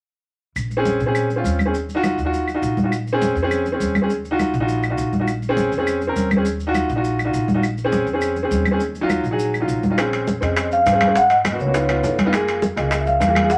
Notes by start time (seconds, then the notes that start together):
0.56 A#1, high conga, claves, maracas
0.71 high conga, maracas
0.77 C4 C#4 G#4
0.85 high conga, maracas
1.00 A#2, high conga, maracas
1.06 C4 C#4 G#4
1.15 high conga, claves, maracas
1.30 high conga, maracas
1.36 C4 C#4 F4
1.44 D#2, high conga, maracas
1.59 high conga, claves, maracas
1.66 C4 C#4 G#4
1.74 maracas
1.89 high conga, maracas
1.95 D#4 F4 F#4
2.04 high conga, claves, maracas
2.18 D#2, high conga, maracas
2.25 D#4 F4 F#4
2.33 high conga, maracas
2.48 high conga, claves, maracas
2.54 D#4 F4 F#4
2.62 A#1, high conga, maracas
2.77 high conga, maracas
2.83 D#4 F4 F#4
2.92 high conga, claves, maracas
3.07 high conga, maracas
3.13 C4 C#4 G#4
3.22 high conga, maracas
3.35 F2, high conga, maracas
3.43 C4 C#4 G#4
3.51 high conga, claves, maracas
3.66 high conga, maracas
3.72 C4 C#4 G#4
3.80 D#2, high conga, maracas
3.95 high conga, claves, maracas
4.02 C4 C#4 G#4
4.10 high conga, maracas
4.25 high conga, maracas
4.31 D#4 F4 F#4
4.39 high conga, claves, maracas
4.54 A#1, high conga, maracas
4.60 D#4 F4 F#4
4.68 high conga, maracas
4.83 high conga, claves, maracas
4.90 D#4 F4 F#4
4.98 A#1, high conga, maracas
5.13 high conga, maracas
5.20 D#4 F4 F#4
5.27 high conga, claves, maracas
5.42 high conga, maracas
5.49 C4 C#4 G#4
5.57 high conga, maracas
5.72 F2, high conga, maracas
5.78 C4 C#4 G#4
5.87 high conga, claves, maracas
6.02 high conga, maracas
6.07 C4 C#4 A#4
6.16 D#2, high conga, maracas
6.31 high conga, claves, maracas
6.36 C4 C#4 G#4
6.45 high conga, maracas
6.60 high conga, maracas
6.67 D#4 F4 F#4
6.75 high conga, claves, maracas
6.89 A#1, high conga, maracas
6.96 D#4 F4 F#4
7.04 high conga, maracas
7.19 high conga, claves, maracas
7.25 D#4 F4 F#4
7.34 A#1, high conga, maracas
7.48 high conga, maracas
7.54 D#4 F4 F#4
7.63 high conga, claves, maracas
7.78 high conga, maracas
7.85 C4 C#4 G#4
7.92 high conga, maracas
8.06 F2, high conga, maracas
8.13 C4 C#4 G#4
8.21 high conga, claves, maracas
8.36 high conga, maracas
8.43 C4 C#4 G#4
8.51 D#2, high conga, maracas
8.65 high conga, claves, maracas
8.71 C4 C#4 G#4
8.80 high conga, maracas
8.95 high conga, maracas
9.01 F#3 D#4 F4
9.10 high conga, claves, maracas
9.23 A#1, high conga, maracas
9.31 F#3 D#4 G#4
9.39 high conga, maracas
9.54 high conga, claves, maracas
9.60 F#3 D#4 F4
9.68 A#1, high conga, maracas
9.83 high conga, maracas
9.90 F#3 D#4 F4
9.98 C4 C#4 G#4, high bongo, high conga, high timbale, claves, maracas
10.13 high conga, high timbale, maracas
10.27 high bongo, high conga, maracas
10.41 F2 C4 C#4 G#4 D#5, high bongo, high conga, high timbale, maracas
10.56 high bongo, high conga, high timbale, claves, maracas
10.71 F5, high bongo, high conga, maracas
10.86 G#2, high bongo, low bongo, high conga, high timbale, maracas
10.92 C4 C#4 G#4
11.01 high bongo, high conga, high timbale, claves, maracas
11.07 C4 C#4 G#4
11.16 F#5, high bongo, high conga, maracas
11.30 D#5, high conga, high timbale, maracas
11.45 high bongo, high conga, high timbale, claves, maracas
11.52 A#3 B3 F#4
11.59 C#2 C#5, high bongo, maracas
11.66 A#3 B3 F#4
11.74 B3 D#4 F4, high bongo, high conga, high timbale, maracas
11.88 B3 D#4 F4, high bongo, high conga, high timbale, claves, maracas
12.03 F#2, high bongo, low bongo, high conga, low timbale, maracas
12.18 high bongo, high conga, high timbale, maracas
12.25 B3 D#4 F4
12.32 A#3 F4 G#4, high bongo, high conga, high timbale, claves, maracas
12.48 high conga, high timbale, maracas
12.62 high bongo, high conga, maracas
12.76 C#2 A#3 F4 G#4 D#5, high bongo, high conga, high timbale, maracas
12.91 high bongo, high conga, high timbale, claves, maracas
13.01 E5
13.06 F5, high bongo, high conga, maracas
13.20 E2, high bongo, low bongo, high conga, high timbale, maracas
13.27 A#3 F4 G#4
13.35 high bongo, high conga, high timbale, claves, maracas
13.42 A#3 F4 G#4
13.50 F#5, high bongo, high conga, maracas